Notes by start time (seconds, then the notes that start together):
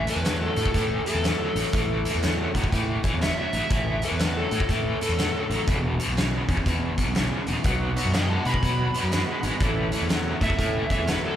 0.07 A2 E3 B4, closed hi-hat
0.16 E2
0.24 A2 F#3, snare, closed hi-hat
0.42 A4
0.56 A2 F#3, closed hi-hat
0.66 kick
0.74 A2 E3, kick, closed hi-hat
1.06 A2 E3 A4, closed hi-hat
1.15 E2
1.23 A2 F#3, snare, closed hi-hat
1.55 A1 A2 F#3, closed hi-hat
1.73 A1 A2 E3, kick, closed hi-hat
2.05 A2 E3, closed hi-hat
2.15 E2
2.22 A2 F#3, snare, closed hi-hat
2.54 A2 F#3, kick, closed hi-hat
2.64 kick
2.72 A2 E3, kick, closed hi-hat
3.04 A2 E3, kick, closed hi-hat
3.13 E2
3.21 A2 F#3 E5, snare, closed hi-hat
3.39 E5
3.53 A1 A2 F#3, closed hi-hat
3.70 A1 A2 E3, kick, closed hi-hat
4.02 A2 E3 B4, closed hi-hat
4.11 E2
4.19 A2 F#3, snare, closed hi-hat
4.37 A4
4.51 A2 F#3, closed hi-hat
4.60 kick
4.69 A2 E3, kick, closed hi-hat
5.01 A2 E3 A4, closed hi-hat
5.09 E2
5.18 A2 F#3, snare, closed hi-hat
5.50 A1 A2 F#3, closed hi-hat
5.66 E1 E2 B2, kick, closed hi-hat
5.99 E2 B2, closed hi-hat
6.08 B1
6.17 E2 C#3, snare, closed hi-hat
6.48 E2 C#3, kick, closed hi-hat
6.57 kick
6.66 E2 B2, kick, closed hi-hat
6.98 E2 B2, kick, closed hi-hat
7.07 B1
7.15 E2 C#3, snare, closed hi-hat
7.47 E1 E2 C#3, closed hi-hat
7.64 B1 B2 F#3 B3 D#4 F#4 B4, kick, closed hi-hat
7.96 B2 F#3 B3 D#4 F#4 B4, closed hi-hat
8.05 F#2
8.13 B2 G#3 B3 D#4 F#4 B4 D#5 G5, snare, closed hi-hat
8.29 F#5 A5
8.45 B2 G#3 B3 D#4 F#4 B4 B5, closed hi-hat
8.54 kick
8.62 B2 F#3 B3 D#4 F#4 B4, kick, closed hi-hat
8.93 B2 F#3 B3 D#4 F#4 B4, closed hi-hat
9.03 F#2
9.11 B2 G#3 B3 D#4 F#4 B4, snare, closed hi-hat
9.41 G#1 B2 G#3 B3 D#4 F#4 B4, closed hi-hat
9.60 A1 A2 E3 A3 C#4 E4 A4, kick, closed hi-hat
9.92 A2 E3 A3 C#4 E4 A4, closed hi-hat
10.02 E2
10.09 A2 F#3 A3 C#4 E4 A4, snare, closed hi-hat
10.40 A2 F#3 A3 C#4 E4 A4 E5, kick, closed hi-hat
10.50 kick
10.58 A2 E3 A3 C#4 E4 A4, kick, closed hi-hat
10.89 A2 E3 A3 C#4 E4 A4 E5, kick, closed hi-hat
10.99 E2
11.06 A2 F#3 A3 C#4 E4 A4 B4, snare, closed hi-hat
11.26 A4